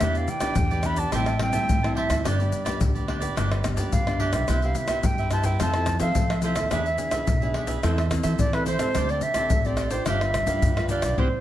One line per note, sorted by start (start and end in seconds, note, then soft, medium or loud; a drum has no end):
0.00 0.25 E2 medium
0.00 0.54 E3 medium
0.00 0.27 B3 medium
0.00 0.28 D4 medium
0.00 0.14 E4 medium
0.00 0.14 G4 medium
0.00 0.28 G4 medium
0.00 0.15 B4 medium
0.00 0.14 D5 medium
0.00 0.19 E5 medium
0.00 pandeiro medium
0.00 tamborim medium
0.00 shaker medium
0.00 surdo medium
0.15 0.43 G4 soft
0.15 0.41 B4 soft
0.15 0.40 D5 soft
0.15 0.31 F5 medium
0.15 pandeiro soft
0.15 shaker soft
0.28 0.87 G5 medium
0.28 pandeiro medium
0.28 shaker medium
0.40 0.80 B3 medium
0.40 0.80 D4 medium
0.40 0.80 G4 medium
0.40 0.56 G4 medium
0.40 0.56 B4 medium
0.40 0.55 D5 medium
0.40 pandeiro medium
0.40 tamborim medium
0.40 shaker medium
0.40 surdo soft
0.55 1.05 E2 loud
0.55 1.10 B2 soft
0.55 pandeiro medium
0.55 shaker medium
0.55 surdo loud
0.71 0.84 G4 soft
0.71 0.85 B4 soft
0.71 0.84 D5 soft
0.71 pandeiro soft
0.71 shaker soft
0.83 1.11 B3 medium
0.83 1.11 D4 soft
0.83 0.98 E4 soft
0.83 0.98 G4 soft
0.83 1.11 G4 medium
0.83 0.97 B4 medium
0.83 0.96 D5 medium
0.83 1.00 B5 medium
0.83 pandeiro soft
0.83 tamborim medium
0.83 shaker medium
0.96 1.11 G4 soft
0.96 1.12 B4 medium
0.96 1.11 D5 medium
0.96 1.13 A5 medium
0.96 pandeiro medium
0.96 shaker medium
0.96 surdo soft
1.12 1.49 A1 loud
1.12 1.67 A2 medium
1.12 1.30 G3 medium
1.12 1.30 C4 medium
1.12 1.30 E4 medium
1.12 1.26 G4 medium
1.12 1.26 C5 medium
1.12 1.27 E5 medium
1.12 1.40 G5 loud
1.12 1.26 A5 medium
1.12 pandeiro medium
1.12 tamborim medium
1.12 shaker medium
1.12 surdo medium
1.26 1.39 C5 soft
1.26 1.39 E5 soft
1.26 1.40 A5 soft
1.26 pandeiro soft
1.26 tamborim medium
1.26 shaker soft
1.39 1.78 G3 medium
1.39 1.79 C4 medium
1.39 1.79 E4 medium
1.39 1.93 G5 loud
1.39 muted cavaquinho stroke soft
1.39 pandeiro medium
1.39 tamborim medium
1.52 1.66 A2 medium
1.52 1.82 C5 medium
1.52 1.81 E5 medium
1.52 1.81 A5 medium
1.52 pandeiro medium
1.52 shaker medium
1.52 surdo soft
1.69 2.05 A2 medium
1.69 2.22 E3 medium
1.69 pandeiro medium
1.69 shaker medium
1.69 surdo medium
1.83 2.21 G3 medium
1.83 2.21 C4 medium
1.83 2.21 E4 medium
1.83 1.95 C5 soft
1.83 1.96 E5 soft
1.83 1.96 A5 medium
1.83 pandeiro soft
1.83 tamborim medium
1.83 shaker soft
1.95 2.09 G4 medium
1.95 2.10 C5 medium
1.95 2.28 E5 medium
1.95 2.09 E5 medium
1.95 2.08 A5 medium
1.95 pandeiro medium
2.09 2.22 D2 medium
2.09 2.24 C5 soft
2.09 2.24 E5 soft
2.09 2.23 A5 medium
2.09 pandeiro medium
2.09 tamborim medium
2.09 shaker medium
2.09 surdo soft
2.24 2.49 G1 loud
2.24 2.79 G3 medium
2.24 2.35 B3 medium
2.24 2.38 D4 medium
2.24 2.35 D4 medium
2.24 2.38 G4 medium
2.24 2.35 G4 medium
2.24 2.38 B4 medium
2.24 2.82 D5 medium
2.24 2.37 D5 medium
2.24 pandeiro medium
2.24 tamborim medium
2.24 shaker medium
2.24 surdo medium
2.39 2.63 B3 medium
2.39 2.64 D4 medium
2.39 2.66 G4 soft
2.39 2.64 G4 medium
2.39 2.65 B4 soft
2.39 2.64 D5 soft
2.39 pandeiro soft
2.39 shaker soft
2.52 pandeiro medium
2.52 shaker medium
2.65 3.04 B3 medium
2.65 3.04 D4 medium
2.65 2.80 G4 medium
2.65 3.05 G4 medium
2.65 2.79 B4 medium
2.65 2.79 D5 medium
2.65 pandeiro medium
2.65 tamborim medium
2.65 shaker medium
2.65 surdo soft
2.81 3.28 D2 loud
2.81 3.35 D3 medium
2.81 muted cavaquinho stroke soft
2.81 pandeiro medium
2.81 shaker medium
2.81 surdo loud
2.95 3.07 G4 soft
2.95 3.08 B4 soft
2.95 3.08 D5 soft
2.95 pandeiro soft
2.95 shaker soft
3.07 3.60 B3 medium
3.07 3.21 D4 soft
3.07 3.60 D4 soft
3.07 3.21 G4 soft
3.07 3.60 G4 medium
3.07 3.20 B4 medium
3.07 3.19 D5 medium
3.07 pandeiro soft
3.07 tamborim medium
3.20 3.35 G4 medium
3.20 3.35 B4 medium
3.20 3.34 D5 medium
3.20 pandeiro medium
3.20 shaker medium
3.20 surdo soft
3.36 3.72 G1 loud
3.36 3.90 G3 medium
3.36 3.49 D4 medium
3.36 3.49 G4 medium
3.36 3.50 B4 medium
3.36 3.49 D5 medium
3.36 pandeiro medium
3.36 tamborim medium
3.36 shaker medium
3.36 surdo medium
3.50 3.63 G4 soft
3.50 3.63 B4 soft
3.50 3.63 D5 soft
3.50 pandeiro soft
3.50 tamborim medium
3.50 shaker soft
3.63 4.02 B3 medium
3.63 4.02 D4 medium
3.63 4.03 G4 medium
3.63 muted cavaquinho stroke soft
3.63 pandeiro medium
3.63 tamborim medium
3.63 shaker medium
3.63 surdo soft
3.76 3.90 G2 medium
3.76 4.06 G4 medium
3.76 4.05 B4 medium
3.76 4.04 D5 medium
3.76 pandeiro medium
3.76 shaker medium
3.76 surdo soft
3.92 4.28 G2 medium
3.92 4.46 D3 medium
3.92 4.21 F5 medium
3.92 pandeiro medium
3.92 shaker medium
3.92 surdo medium
4.07 4.44 B3 medium
4.07 4.44 D4 medium
4.07 4.45 G4 medium
4.07 4.19 G4 soft
4.07 4.20 B4 soft
4.07 4.20 D5 soft
4.07 pandeiro soft
4.07 tamborim medium
4.07 shaker soft
4.19 4.33 D4 medium
4.19 4.33 G4 medium
4.19 4.32 B4 medium
4.19 4.31 D5 medium
4.19 4.62 E5 medium
4.19 pandeiro medium
4.32 4.46 B1 medium
4.32 4.47 G4 soft
4.32 4.47 B4 soft
4.32 4.46 D5 medium
4.32 pandeiro medium
4.32 tamborim medium
4.32 shaker medium
4.32 surdo soft
4.48 4.72 C2 medium
4.48 5.02 C3 medium
4.48 4.57 B3 medium
4.48 4.61 E4 medium
4.48 4.57 E4 medium
4.48 4.58 G4 medium
4.48 4.62 B4 medium
4.48 4.61 C5 medium
4.48 4.61 E5 medium
4.48 pandeiro medium
4.48 tamborim medium
4.48 shaker medium
4.48 surdo medium
4.62 4.87 B3 medium
4.62 4.87 E4 medium
4.62 4.87 G4 medium
4.62 4.88 B4 soft
4.62 4.89 C5 soft
4.62 4.87 E5 soft
4.62 4.78 F5 medium
4.62 pandeiro soft
4.62 shaker soft
4.75 5.07 E5 medium
4.75 pandeiro medium
4.75 shaker medium
4.88 5.27 B3 medium
4.88 5.28 E4 medium
4.88 5.28 G4 medium
4.88 5.03 B4 medium
4.88 5.03 C5 medium
4.88 5.02 E5 medium
4.88 pandeiro medium
4.88 tamborim medium
4.88 shaker medium
4.88 surdo soft
5.03 5.52 G2 loud
5.03 5.58 G2 medium
5.03 5.32 G5 loud
5.03 muted cavaquinho stroke soft
5.03 pandeiro medium
5.03 shaker medium
5.03 surdo medium
5.18 5.32 B4 soft
5.18 5.31 C5 soft
5.18 5.31 E5 soft
5.18 pandeiro soft
5.18 shaker soft
5.31 5.58 B3 soft
5.31 5.45 E4 soft
5.31 5.58 E4 medium
5.31 5.58 G4 medium
5.31 5.45 B4 medium
5.31 5.45 C5 medium
5.31 5.43 E5 medium
5.31 5.47 A5 medium
5.31 pandeiro medium
5.31 tamborim medium
5.31 shaker medium
5.44 5.59 B4 medium
5.44 5.59 C5 medium
5.44 5.58 E5 medium
5.44 5.60 G5 medium
5.44 pandeiro medium
5.44 shaker medium
5.44 surdo soft
5.60 5.96 F2 loud
5.60 6.13 F3 medium
5.60 5.70 C4 medium
5.60 5.70 E4 soft
5.60 5.73 F4 medium
5.60 5.73 A4 medium
5.60 5.70 A4 medium
5.60 5.74 C5 medium
5.60 5.73 E5 medium
5.60 6.00 A5 loud
5.60 pandeiro medium
5.60 tamborim medium
5.60 shaker medium
5.60 surdo medium
5.74 5.98 C4 medium
5.74 5.98 E4 medium
5.74 5.98 A4 medium
5.74 5.87 A4 soft
5.74 5.87 C5 soft
5.74 5.87 E5 soft
5.74 pandeiro soft
5.74 tamborim medium
5.74 shaker soft
5.86 muted cavaquinho stroke soft
5.86 pandeiro medium
5.86 tamborim medium
5.86 shaker medium
5.86 surdo soft
6.00 6.13 F3 medium
6.00 6.38 C4 medium
6.00 6.39 A4 medium
6.00 6.29 A4 medium
6.00 6.29 C5 medium
6.00 6.28 E5 medium
6.00 6.41 F5 medium
6.00 pandeiro medium
6.00 shaker medium
6.00 surdo soft
6.15 6.69 C3 medium
6.15 6.52 F3 medium
6.15 pandeiro medium
6.15 shaker medium
6.15 surdo medium
6.30 6.43 A4 soft
6.30 6.44 C5 soft
6.30 6.43 E5 soft
6.30 pandeiro soft
6.30 tamborim medium
6.30 shaker soft
6.42 6.69 C4 medium
6.42 6.70 E4 medium
6.42 6.56 F4 medium
6.42 6.57 A4 medium
6.42 6.70 A4 medium
6.42 6.57 C5 medium
6.42 8.08 E5 medium
6.42 6.55 E5 medium
6.42 pandeiro medium
6.42 shaker medium
6.56 6.69 D#2 medium
6.56 6.71 A4 soft
6.56 6.71 C5 soft
6.56 6.70 E5 soft
6.56 pandeiro medium
6.56 tamborim medium
6.56 shaker medium
6.56 surdo soft
6.71 6.96 E2 medium
6.71 7.24 E3 medium
6.71 6.88 B3 medium
6.71 6.88 D4 medium
6.71 6.85 D4 medium
6.71 6.88 G#4 medium
6.71 6.85 G#4 medium
6.71 6.85 B4 medium
6.71 6.85 E5 medium
6.71 pandeiro medium
6.71 tamborim medium
6.71 shaker medium
6.71 surdo medium
6.86 7.13 G#4 soft
6.86 7.12 B4 soft
6.86 7.11 E5 soft
6.86 pandeiro soft
6.86 shaker soft
6.98 7.25 B3 medium
6.98 7.25 D4 medium
6.98 7.25 G#4 medium
6.98 pandeiro medium
6.98 shaker medium
7.11 7.27 G#4 soft
7.11 7.26 B4 medium
7.11 7.26 E5 medium
7.11 pandeiro medium
7.11 tamborim medium
7.11 shaker medium
7.11 surdo soft
7.27 7.75 B1 medium
7.27 7.80 B2 medium
7.27 muted cavaquinho stroke soft
7.27 pandeiro medium
7.27 shaker medium
7.27 surdo loud
7.41 7.79 B3 medium
7.41 7.79 D4 medium
7.41 7.79 G#4 medium
7.41 7.54 G#4 soft
7.41 7.54 B4 soft
7.41 7.54 E5 medium
7.41 pandeiro soft
7.41 shaker soft
7.54 7.68 D4 soft
7.54 7.68 G#4 soft
7.54 7.67 B4 soft
7.54 7.66 E5 medium
7.54 pandeiro medium
7.54 tamborim medium
7.67 7.82 G#4 medium
7.67 7.82 B4 medium
7.67 7.81 E5 medium
7.67 pandeiro medium
7.67 shaker medium
7.67 surdo soft
7.82 8.19 E2 loud
7.82 8.36 E3 medium
7.82 8.00 C4 medium
7.82 7.96 E4 medium
7.82 8.00 E4 medium
7.82 7.96 A4 medium
7.82 8.00 A4 medium
7.82 7.97 C5 medium
7.82 7.96 E5 medium
7.82 pandeiro medium
7.82 tamborim medium
7.82 shaker medium
7.82 surdo medium
7.97 8.10 A4 soft
7.97 8.10 C5 soft
7.97 8.10 E5 soft
7.97 pandeiro soft
7.97 tamborim medium
7.97 shaker soft
8.10 8.48 C4 medium
8.10 8.48 E4 medium
8.10 8.49 A4 medium
8.10 muted cavaquinho stroke soft
8.10 pandeiro medium
8.10 tamborim medium
8.10 shaker medium
8.10 surdo soft
8.23 8.37 E3 medium
8.23 8.52 A4 medium
8.23 8.52 C5 medium
8.23 8.51 E5 medium
8.23 pandeiro medium
8.23 shaker medium
8.23 surdo soft
8.39 8.92 E3 medium
8.39 8.75 E3 medium
8.39 8.56 D5 loud
8.39 pandeiro medium
8.39 shaker medium
8.39 surdo medium
8.53 8.76 C4 medium
8.53 8.77 E4 medium
8.53 8.77 A4 medium
8.53 8.65 A4 soft
8.53 8.66 B4 medium
8.53 8.66 C5 soft
8.53 8.67 E5 soft
8.53 pandeiro soft
8.53 tamborim medium
8.53 shaker soft
8.66 8.79 E4 medium
8.66 8.80 A4 medium
8.66 9.12 C5 loud
8.66 8.80 C5 medium
8.66 8.78 E5 medium
8.66 pandeiro medium
8.66 shaker medium
8.79 8.92 C#2 medium
8.79 9.17 C4 medium
8.79 9.18 G4 medium
8.79 9.18 A4 medium
8.79 8.94 A4 soft
8.79 8.94 C5 soft
8.79 8.93 E5 medium
8.79 pandeiro medium
8.79 tamborim medium
8.79 shaker medium
8.79 surdo soft
8.94 9.19 D2 medium
8.94 9.48 D3 medium
8.94 9.08 D4 medium
8.94 9.08 G4 medium
8.94 9.09 C5 medium
8.94 9.08 D5 medium
8.94 pandeiro medium
8.94 tamborim medium
8.94 shaker medium
8.94 surdo medium
9.09 9.37 G4 soft
9.09 9.35 C5 soft
9.09 9.34 D5 soft
9.09 9.24 D5 medium
9.09 pandeiro soft
9.09 shaker soft
9.21 9.67 E5 loud
9.21 pandeiro medium
9.21 shaker medium
9.34 9.59 C4 medium
9.34 9.60 G4 medium
9.34 9.50 G4 medium
9.34 9.60 A4 medium
9.34 9.49 C5 medium
9.34 9.49 D5 medium
9.34 pandeiro medium
9.34 tamborim medium
9.34 shaker medium
9.34 surdo soft
9.50 9.98 A1 medium
9.50 10.04 A2 soft
9.50 muted cavaquinho stroke soft
9.50 pandeiro medium
9.50 shaker medium
9.50 surdo loud
9.65 9.88 C4 medium
9.65 9.89 G4 medium
9.65 9.78 G4 soft
9.65 9.89 A4 medium
9.65 9.78 C5 soft
9.65 9.78 D5 medium
9.65 9.93 D5 medium
9.65 pandeiro soft
9.65 shaker soft
9.77 9.91 D4 medium
9.77 9.92 G4 medium
9.77 9.91 C5 medium
9.77 9.90 D5 medium
9.77 pandeiro medium
9.77 tamborim medium
9.77 shaker medium
9.91 10.43 D4 medium
9.91 10.43 F4 medium
9.91 10.06 G4 medium
9.91 10.43 B4 medium
9.91 10.06 C5 medium
9.91 10.05 C5 medium
9.91 10.05 D5 medium
9.91 pandeiro medium
9.91 shaker medium
9.91 surdo soft
10.06 10.42 G1 medium
10.06 10.59 G3 medium
10.06 10.19 D4 medium
10.06 10.20 G4 medium
10.06 10.20 B4 medium
10.06 10.86 E5 loud
10.06 10.20 F5 medium
10.06 pandeiro medium
10.06 tamborim medium
10.06 shaker medium
10.06 surdo medium
10.21 10.34 B4 soft
10.21 10.34 F5 medium
10.21 pandeiro soft
10.21 tamborim medium
10.21 shaker soft
10.34 muted cavaquinho stroke soft
10.34 pandeiro medium
10.34 tamborim medium
10.34 shaker medium
10.34 surdo soft
10.46 10.59 G2 medium
10.46 10.71 D4 medium
10.46 10.71 F4 medium
10.46 10.76 G4 medium
10.46 10.71 B4 medium
10.46 10.75 B4 medium
10.46 10.74 F5 medium
10.46 pandeiro medium
10.46 shaker medium
10.46 surdo soft
10.62 10.98 G2 medium
10.62 11.15 D3 medium
10.62 pandeiro medium
10.62 shaker medium
10.62 surdo medium
10.76 11.14 D4 medium
10.76 11.14 F4 medium
10.76 10.89 G4 soft
10.76 11.14 B4 medium
10.76 10.90 B4 soft
10.76 10.90 F5 soft
10.76 pandeiro soft
10.76 tamborim medium
10.76 shaker soft
10.89 11.03 D4 medium
10.89 11.03 G4 medium
10.89 11.02 B4 medium
10.89 11.20 D5 loud
10.89 11.01 F5 medium
10.89 pandeiro medium
10.89 shaker medium
11.02 11.15 B1 medium
11.02 11.17 G4 soft
11.02 11.17 B4 soft
11.02 11.16 F5 soft
11.02 pandeiro medium
11.02 tamborim medium
11.02 shaker medium
11.02 surdo soft
11.17 11.28 C2 medium
11.17 11.27 B3 medium
11.17 11.27 C4 loud
11.17 11.27 E4 loud
11.17 11.27 G4 medium
11.17 11.27 B4 medium
11.17 11.27 C5 medium
11.17 11.40 C5 medium
11.17 surdo medium